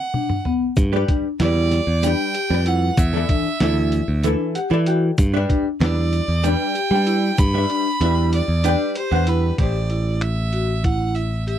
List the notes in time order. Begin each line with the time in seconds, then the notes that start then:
Already playing: F#5
0.14 D4, high tom
0.30 mid tom
0.45 B3, mid tom
0.77 G2, kick, closed hi-hat, shaker
0.93 G3 G4 B4 D5
1.08 D4, kick, closed hi-hat
1.40 E2 G3 E4 G4 B4 D5, snare, closed hi-hat, shaker
1.71 snare, closed hi-hat, shaker
1.87 E2
2.03 G3 D4 G4 B4 D5 G5, closed hi-hat, shaker
2.34 G4, closed hi-hat
2.50 F2 G3 G4 B4 D5
2.66 E4 F#5, closed hi-hat, shaker
2.97 E2 E5, kick, closed hi-hat, shaker
3.13 E3 E4 A4 D5
3.29 D4, kick, closed hi-hat
3.60 D2 E3 E4 A4 D5, snare, closed hi-hat, shaker
3.92 closed hi-hat, shaker
4.08 D2
4.23 E3 D4 E4 A4 B4, closed hi-hat, shaker
4.55 G4 F#5, closed hi-hat, shaker
4.70 E3 E4 A4 D5 E5
4.86 F#4 G5, closed hi-hat, shaker
5.18 G2, kick, closed hi-hat, shaker
5.34 G3 D4 B4 E5
5.49 D4, kick, closed hi-hat
5.80 E2 G3 D4 E4 B4 D5, snare, closed hi-hat, shaker
6.12 closed hi-hat, shaker
6.28 E2
6.44 G3 D4 B4 D5 G5, closed hi-hat, shaker
6.75 G4, closed hi-hat, shaker
6.91 G3 D4 B4 G5
7.06 E4, closed hi-hat, shaker
7.38 G2 B5, kick, closed hi-hat, shaker
7.54 G3 D4 B4 E5
7.70 D4, closed hi-hat
8.01 E2 G3 D4 E4 B4 E5, closed hi-hat
8.32 D5, closed hi-hat, shaker
8.48 E2
8.64 G3 D4 B4 G5, closed hi-hat, shaker
8.95 G4 C5, closed hi-hat
9.11 E2 G3 D4 B4 F#5
9.27 E4 B4, closed hi-hat, shaker
9.58 A1 A3 E4 G4 C5 D5, kick, closed hi-hat
9.90 E4, closed hi-hat
10.21 E5, finger snap, closed hi-hat
10.53 F#4, closed hi-hat
10.84 E4 F#5, kick, closed hi-hat
11.15 E5, closed hi-hat
11.47 G4 E5, closed hi-hat